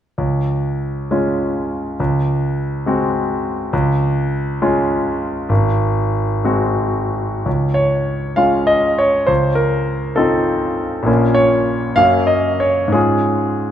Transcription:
grand piano
0.18 C#2
1.11 G#3 C#4 F4
2.00 C#2
2.86 G#3 C4 F#4
3.73 C#2
4.62 G#3 C#4 F4
5.49 G#1
6.44 G#3 C4 F#4
7.46 C#2
7.74 C#5
8.36 G#3 C#4 F4 F5
8.67 D#5
8.98 C#5
9.27 C#2 C5
9.55 A#4
10.16 C4 D#4 F4 A4
11.03 A#1 A#3 C#4
11.07 F4
11.34 C#5
11.96 F#2 A#3 C#4 F#4 F5
12.27 D#5
12.60 C#5
12.88 G#2
12.92 G#3 C#4 F4 G#4

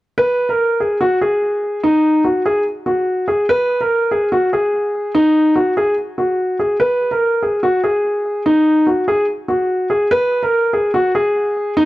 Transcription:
grand piano
0.18 B4
0.49 A#4
0.80 G#4
1.01 F#4
1.21 G#4
1.83 D#4
2.24 F#4
2.46 G#4
2.86 F#4
3.28 G#4
3.49 B4
3.81 A#4
4.11 G#4
4.32 F#4
4.53 G#4
5.15 D#4
5.56 F#4
5.77 G#4
6.18 F#4
6.59 G#4
6.80 B4
7.11 A#4
7.43 G#4
7.63 F#4
7.84 G#4
8.46 D#4
8.87 F#4
9.08 G#4
9.48 F#4
9.90 G#4
10.11 B4
10.43 A#4
10.73 G#4
10.94 F#4
11.15 G#4
11.77 D#4

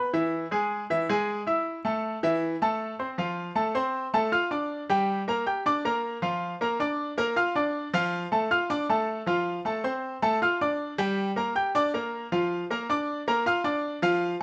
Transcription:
grand piano
Already playing: B3 B4 B5
0.13 E3 E4 E5
0.51 G#3 G#4 G#5
0.90 E3 E4 E5
1.09 G#3 G#4 G#5
1.47 E4 E5 E6
1.85 A3 A4 A5
2.23 E3 E4 E5
2.62 A3 A4 A5
2.99 C4 C5 C6
3.18 F3 F4 F5
3.55 A3 A4 A5
3.75 C4 C5 C6
4.14 A3 A4 A5
4.32 F4 F5 F6
4.51 D4 D5 D6
4.89 G3 G4 G5
5.28 A#3 A#4 A#5
5.46 G4 G5 G6
5.66 D4 D5 D6
5.85 A#3 A#4 A#5
6.22 F3 F4 F5
6.61 A#3 A#4 A#5
6.80 D4 D5 D6
7.18 A#3 A#4 A#5
7.36 F4 F5 F6
7.55 D4 D5 D6
7.94 F3 F4 F5
8.32 A3 A4 A5
8.51 F4 F5 F6
8.70 D4 D5 D6
8.89 A3 A4 A5
9.26 F3 F4 F5
9.65 A3 A4 A5
9.84 C4 C5 C6
10.22 A3 A4 A5
10.42 F4 F5 F6
10.61 D4 D5 D6
10.98 G3 G4 G5
11.36 A#3 A#4 A#5
11.55 G4 G5 G6
11.75 D4 D5 D6
11.94 A#3 A#4 A#5
12.32 F3 F4 F5
12.70 A#3 A#4 A#5
12.90 D4 D5 D6
13.28 A#3 A#4 A#5
13.46 F4 F5 F6
13.64 D4 D5 D6
14.02 F3 F4 F5

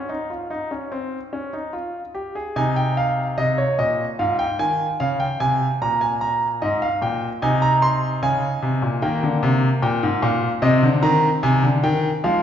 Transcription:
grand piano
Already playing: G#2 C6
0.09 D#4
0.30 F4
0.50 D#4
0.71 C#4
0.92 C4
1.33 C#4
1.53 D#4
1.73 F4
2.15 G4
2.35 G#4
2.56 C3 D#4 G#5
2.76 G5
2.97 F5
3.38 C3 D#5
3.58 C#5
3.79 A#2 D#5
4.19 G#2 F4 F5
4.39 G5
4.59 D#3 G#5
5.00 C#3 F5
5.20 G5
5.40 C3 G#5
5.82 A#2 A#5
6.01 G#5
6.21 A#5
6.62 G#2 D#5
6.82 F5
7.02 A#2 G5
7.42 C3 D#4 G#5
7.62 A#5
7.82 C6
8.22 C#3 G#5
8.62 C3
8.82 A#2
9.02 D#3 A#3 G5
9.23 D3
9.43 C3
9.82 A#2 G5
10.03 G#2
10.23 A#2 F5
10.62 C3 C4 D#5
10.83 D3
11.03 D#3 A#5
11.43 C3 G#5
11.63 D3
11.84 D#3 G5
12.24 F3 G#3 F5

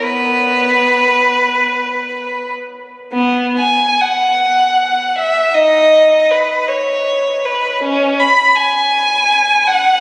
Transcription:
violin
0.03 B3 B4
3.13 B3
3.59 G#5
4.01 F#5
5.18 E5
5.54 D#4 D#5
6.31 B4
6.68 C#5
7.45 B4
7.83 C#4
8.20 B5
8.55 G#5
9.67 F#5

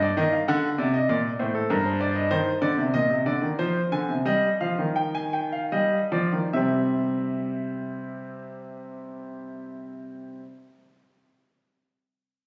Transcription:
grand piano
0.02 D5
0.17 D#3 D#5
0.33 F5
0.48 D3 F#5
0.78 C3 D5
0.94 D#5
1.09 A#2 D5
1.39 A2 C5
1.55 A4
1.70 G2 A#4
1.85 C5
2.01 D5
2.15 D#5
2.31 D#3 C5
2.62 D3 D5
2.77 C3
2.94 A#2 D#5
3.10 C3
3.26 D3 D5
3.42 D#3
3.59 F3 C5
3.92 D3 G#5
4.09 C3
4.25 G3 D#5
4.61 F3 F5
4.79 D#3
4.96 G5
5.15 G#5
5.33 G5
5.52 F5
5.72 G3 D#5
6.12 F3 D5
6.33 D#3
6.53 C3 G3 C4 E5

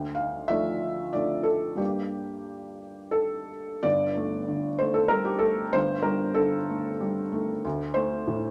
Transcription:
felt piano
Already playing: D2
0.15 F5
0.48 F3 A3 D4 E5
1.13 F3 A3 D4 D5
1.43 A4
1.75 G2 G3 A#3 D4 G4
3.11 A4
3.83 G1 G2 D5
4.16 A3
4.48 D3
4.79 A3 C5
4.94 A4
5.08 G3 A#4
5.25 G4
5.39 A3 A4
5.73 G1 G2 C5
6.03 G3 A#4
6.34 D3 A4
6.69 A3
7.00 G3
7.32 A3
7.65 D2
7.94 A3 C5
8.27 A2

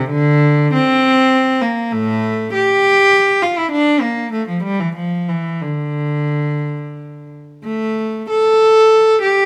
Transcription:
cello
Already playing: C3
0.10 D3
0.73 C4
1.62 A#3
1.92 A2 A3
2.53 G4
3.42 F4
3.58 E4
3.72 D4
4.01 A#3
4.32 A3
4.48 F3
4.64 G3
4.80 E3
4.95 F3
5.29 E3
5.62 D3
7.64 A3
8.30 A4
9.22 G4

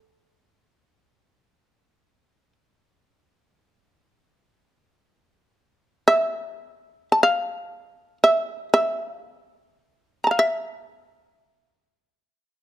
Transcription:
shamisen
Already playing: A4
6.08 E5
7.12 A5
7.23 F5
8.24 E5
8.74 E5
9.12 F5
10.24 A5 A#5
10.31 F5
10.39 E5

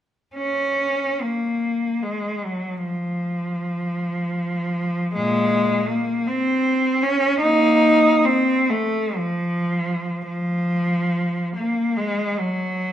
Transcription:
cello
0.35 C#4
1.22 A#3
2.03 G#3
2.44 F#3
2.84 F3
5.15 A#2 G#3
5.89 A#3
6.28 C4
7.03 C#4
7.41 A#3 D#4
8.26 C4
8.70 A3
9.17 F3
10.28 F3
11.56 A#3
11.97 G#3
12.39 F#3

